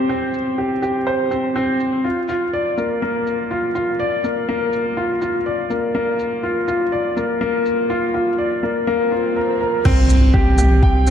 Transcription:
0.00 0.09 C4 medium
0.00 0.58 G4 medium
0.00 1.07 C5 medium
0.09 0.33 C4 medium
0.34 shaker medium
0.58 0.72 G4 medium
0.82 0.96 G4 medium
0.82 shaker medium
1.07 1.30 C5 medium
1.31 1.54 C4 medium
1.31 shaker medium
1.56 1.79 C4 medium
1.80 shaker soft
2.04 2.18 F4 medium
2.29 2.43 F4 medium
2.29 shaker medium
2.53 2.77 D5 medium
2.77 3.01 A#3 medium
2.77 shaker medium
3.02 3.25 A#3 medium
3.27 shaker soft
3.51 3.65 F4 medium
3.75 3.89 F4 medium
3.75 shaker medium
4.00 4.23 D5 medium
4.24 4.47 A#3 medium
4.24 shaker medium
4.49 4.72 A#3 medium
4.73 shaker medium
4.97 5.11 F4 medium
5.22 5.36 F4 medium
5.22 shaker soft
5.46 5.69 D5 medium
5.70 5.93 A#3 medium
5.70 shaker soft
5.95 6.18 A#3 medium
6.19 shaker medium
6.43 6.57 F4 medium
6.68 6.82 F4 medium
6.68 shaker medium
6.92 7.16 D5 medium
7.17 7.39 A#3 medium
7.17 shaker soft
7.41 7.64 A#3 medium
7.66 shaker soft
7.90 8.04 F4 medium
8.14 8.28 F4 medium
8.38 8.62 D5 medium
8.63 8.86 A#3 medium
8.87 9.11 A#3 medium
8.87 swell medium
9.12 9.35 F4 medium
9.36 9.59 A#4 medium
9.61 9.84 A#4 medium
9.85 11.10 C2 medium
9.85 10.08 C4 loud
9.85 kick loud
9.85 crash loud
9.85 impact medium
10.10 shaker medium
10.34 10.48 G4 medium
10.34 kick loud
10.58 10.72 G4 medium
10.58 mid tom medium
10.58 shaker medium
10.83 11.06 G5 medium
10.83 kick loud
11.07 11.10 C4 medium
11.07 shaker medium

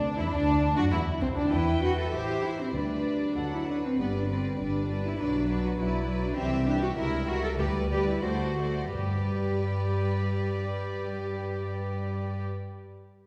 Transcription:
0.00 0.18 D2 medium
0.00 0.17 D4 medium
0.00 0.18 D4 medium
0.18 0.33 E2 medium
0.18 0.24 E4 medium
0.18 0.33 E4 medium
0.32 0.76 D2 medium
0.32 0.76 D4 medium
0.32 0.77 D4 medium
0.76 0.92 F#2 medium
0.76 0.92 F#4 medium
0.76 0.83 F#4 medium
0.76 0.92 F#4 medium
0.91 1.00 E2 medium
0.91 0.99 E4 medium
0.91 1.00 E4 medium
0.91 1.22 E4 medium
1.21 1.27 C2 medium
1.21 1.27 C4 medium
1.21 1.37 C4 medium
1.21 1.28 C4 medium
1.21 1.37 C4 medium
1.36 1.43 D2 medium
1.36 1.52 D4 medium
1.51 2.09 E2 medium
1.51 2.09 E3 medium
1.51 1.82 E4 medium
1.51 2.09 B4 medium
1.51 2.08 G5 medium
1.83 1.97 F#4 medium
1.99 2.13 A4 medium
2.12 2.69 A1 medium
2.12 2.73 E3 soft
2.12 2.42 G4 medium
2.12 2.73 C5 soft
2.12 2.74 E5 soft
2.43 2.58 E4 medium
2.59 2.74 C4 medium
2.73 3.33 D2 medium
2.73 3.33 D3 soft
2.73 3.36 G3 soft
2.73 3.51 D4 medium
2.73 3.37 B4 soft
2.73 3.35 D5 soft
3.37 3.95 D2 soft
3.37 3.78 F#3 soft
3.37 3.66 A4 soft
3.37 3.78 F#5 soft
3.54 3.68 E4 medium
3.68 3.83 D4 medium
3.68 3.97 B4 soft
3.85 3.99 C4 soft
3.98 4.52 G1 medium
3.98 4.28 G3 soft
3.98 4.05 B3 medium
3.98 4.28 B4 soft
3.98 4.28 D5 soft
4.15 4.29 D4 soft
4.29 4.59 G3 soft
4.29 4.59 C4 soft
4.29 4.58 B4 soft
4.29 4.59 D5 soft
4.59 5.12 G1 soft
4.59 4.89 G3 soft
4.59 5.04 D4 medium
4.59 4.89 B4 soft
4.59 4.88 D5 soft
4.90 5.19 G3 soft
4.90 5.18 B4 soft
4.90 5.18 D5 soft
5.06 5.20 E4 medium
5.19 5.72 B1 medium
5.19 5.48 F#3 soft
5.19 5.64 D4 medium
5.19 5.48 B4 medium
5.19 5.48 D5 soft
5.49 5.77 F#3 soft
5.49 5.77 B4 soft
5.49 5.77 D5 soft
5.65 5.70 F#4 medium
5.78 6.30 B1 medium
5.78 6.07 F#3 soft
5.78 6.21 E4 medium
5.78 6.06 B4 soft
5.78 6.07 D5 soft
6.07 6.36 F#3 soft
6.07 6.36 B4 soft
6.07 6.36 D5 soft
6.23 6.37 D4 medium
6.36 6.89 C2 medium
6.36 6.66 E3 medium
6.36 6.66 C4 medium
6.36 6.65 G4 medium
6.36 6.65 E5 medium
6.66 6.96 E3 soft
6.66 6.81 D4 medium
6.66 6.96 G4 medium
6.66 6.95 E5 soft
6.82 6.88 F#4 medium
6.96 7.51 C#2 medium
6.96 7.26 G3 soft
6.96 7.27 E4 medium
6.96 7.26 A#4 medium
6.96 7.26 E5 medium
7.27 7.58 G3 soft
7.27 7.43 F#4 medium
7.27 7.58 A#4 medium
7.27 7.58 E5 soft
7.44 7.50 A4 medium
7.58 8.17 D2 medium
7.58 7.90 G3 medium
7.58 7.67 G4 medium
7.58 7.91 B4 medium
7.58 7.89 D5 medium
7.91 8.24 G3 soft
7.91 8.07 G4 medium
7.91 8.24 B4 medium
7.91 8.23 D5 soft
8.09 8.25 E4 medium
8.24 8.87 D2 medium
8.24 8.58 A3 soft
8.24 8.95 F#4 medium
8.24 8.59 C5 soft
8.24 8.59 D5 soft
8.59 8.94 A3 soft
8.59 8.94 C5 soft
8.59 8.94 D5 soft
8.94 12.43 G2 soft
8.94 12.59 G2 soft
8.94 12.43 G3 soft
8.94 12.44 G4 soft
8.94 12.44 B4 soft
8.94 12.44 D5 soft

